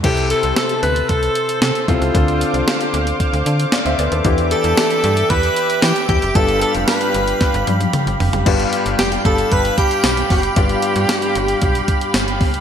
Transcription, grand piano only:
<<
  \new Staff \with { instrumentName = "Grand piano" } { \time 4/4 \key g \mixolydian \tempo 4 = 114 << { r1 | r2. <d'' f''>16 <c'' e''>16 <b' d''>16 <a' c''>16~ | <a' c''>16 r2. r8. | r1 |
r1 | r1 | } \\ { <c' e' g' a'>2.~ <c' e' g' a'>8 <c' e' g' a'>8 | <c' d' f' a'>2. r4 | <b d' e' g'>1 | <b d' f' g'>1 |
<b d' f' g'>1 | <b d' f' g'>1 | } >> }
  \new Staff \with { instrumentName = "Grand piano" } { \clef bass \time 4/4 \key g \mixolydian c4. r2 r8 | d4. r2 r8 | e4. r2 r8 | g,4. r2 r8 |
g,4. r2 r8 | g,4. r2 r8 | }
>>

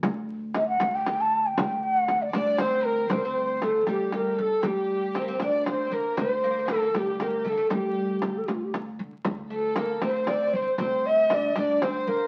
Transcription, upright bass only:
\new Staff \with { instrumentName = "Upright bass" } { \clef bass \time 6/8 \tempo 4. = 78 d,4. d,4. | d,4. d,4. | d,4. d,4 d16 r16 | d,4. d,4 d16 r16 |
d,4. d,4 d16 r16 | d,4. d,4 d16 r16 | d,4. d,4 d16 r16 | d,4. d,4 d16 r16 | }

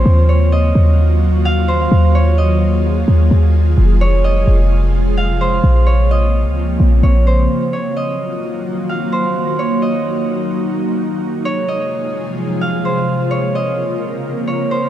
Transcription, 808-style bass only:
\new Staff \with { instrumentName = "808-style bass" } { \clef bass \time 4/4 \key ees \dorian \tempo 4 = 129 ees,4. ees,2~ ees,8 | ees,2~ ees,8 ees,8 ees,4 | f,,4. f,,2~ f,,8 | bes,,4.~ bes,,16 des,8. bes,,8 bes,,4 |
r1 | r1 | r1 | r1 | }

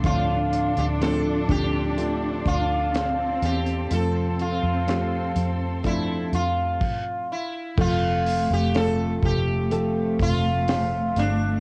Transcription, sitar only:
\new Staff \with { instrumentName = "Sitar" } { \time 4/4 \key f \major \tempo 4 = 62 f'8. g'16 a'8 g'4 f'4 g'8 | a'8 f'4 r8 e'8 f'4 e'8 | f'8. g'16 a'8 g'4 f'4 d'8 | }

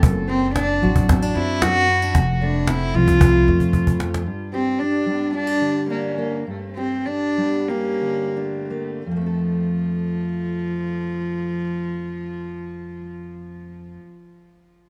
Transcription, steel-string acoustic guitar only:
\new Staff \with { instrumentName = "Steel-string acoustic guitar" } { \time 4/4 \key f \major \tempo 4 = 103 << { c'8 c'8 d'8 fis'8 c'16 d'16 c'4 c'16 d'16 | r8 a8 c'8 c'8 c'8 a4. | r8 g'8 d'4 f'16 g'8. d'8 bes8 | r8 g'8 d'4 g'4 d'8 bes8 |
<f a c' a'>1~ | <f a c' a'>1 | } \\ { fis,4. fis4. fis,4 | f,4. f2 f,8 | g,4. g4 d4. | g,4. g4 d4. |
f,1~ | f,1 | } >> }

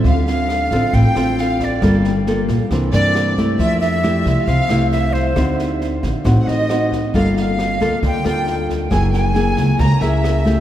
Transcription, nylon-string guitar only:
\new Staff \with { instrumentName = "Nylon-string guitar" } { \time 4/4 \key d \minor \tempo 4 = 136 << { <c' f' a'>4 r8 <c' f' a'>4 <c' f' a'>4. | <bes f' a'>8 r8 <bes f' a'>8 r8 <e bes d'>8 <e bes d'>4 <a e' g'>8~ | <a e' g'>4 <a e' g'>4 r8 <a e' g'>4. | <c' ees' fis'>4. r8 <c' ees' fis'>4 <c' ees' fis'>8 r8 |
<bes f' a'>4. <bes f' a'>4 <bes f' a'>4. | <ais e' gis'>4 <ais e' gis'>4 r8 <ais e' gis'>4 <a e' g'>8 | } \\ { d2 a,2 | g2 c2 | f2 c2 | d2 a,2 |
g2 d2 | fis2 cis2 | } >> }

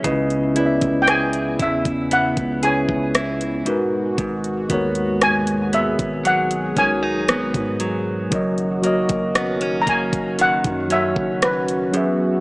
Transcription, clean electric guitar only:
\new Staff \with { instrumentName = "Clean electric guitar" } { \time 4/4 \key dis \phrygian \tempo 4 = 58 cis8 e'8 gis'8 e'8 b8 gis'8 e'8 gis,8 | gis,8 b4 b8 fis8 cis'16 dis'16 b8 fis8 | fis,8 ais8 b16 cis'16 ais8 dis8 cis'4 fis,8 | }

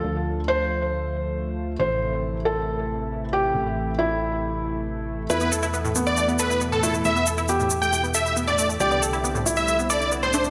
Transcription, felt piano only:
\new Staff \with { instrumentName = "Felt piano" } { \time 4/4 \key a \minor \tempo 4 = 137 a'4 c''2. | c''4. a'2 g'8~ | g'4 e'2. | e'4. b2 e'8~ |
e'4 g'2. | g'4. e'2 d'8 | }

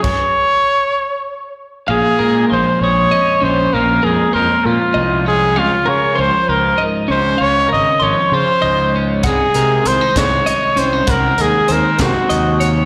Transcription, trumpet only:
\new Staff \with { instrumentName = "Trumpet" } { \time 6/8 \key bes \minor \tempo 4. = 65 des''2~ des''8 r8 | aes'4 c''8 des''4 c''8 | bes'8 aes'8 bes'8 f'4 aes'8 | f'8 des''8 c''8 bes'8 r8 c''8 |
des''8 ees''8 des''8 c''4 r8 | aes'4 c''8 des''4 c''8 | bes'8 aes'8 bes'8 ges'4 r8 | }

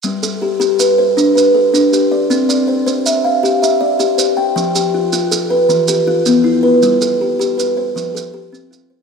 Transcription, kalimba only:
\new Staff \with { instrumentName = "Kalimba" } { \time 12/8 \key g \mixolydian \tempo 4. = 106 << { r8 a'8 g'4 b'8 c''4 b'8 a'4 g'8 d''8~ | d''8 d''8 c''4 e''8 f''4 e''8 d''4 c''8 g''8~ | g''8 g'8 f'4 a'8 b'4 g'8 f'4 e'8 b'8~ | b'8 a'8 g'4 b'8 c''4 a'8 g'4 f'8 c''8 | } \\ { g4 r8 g'4 r8 d'4 r8 d'4 r8 | c'4 r8 c''4 r8 g'4 r8 g'4 r8 | f4 r8 f'4 r8 e4 r8 b4 r8 | g4 r8 g'4 r8 f4 r8 c'4 r8 | } >> }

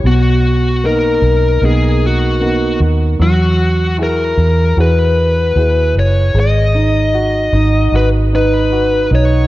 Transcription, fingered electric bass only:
\new Staff \with { instrumentName = "Fingered electric bass" } { \clef bass \time 4/4 \key gis \minor \tempo 4 = 76 b,,4. b,,8 b,,4. dis,8 | e,4. e,8 e,4 dis,8 fis,,8 | gis,,4. gis,,8 gis,,4. b,,8 | }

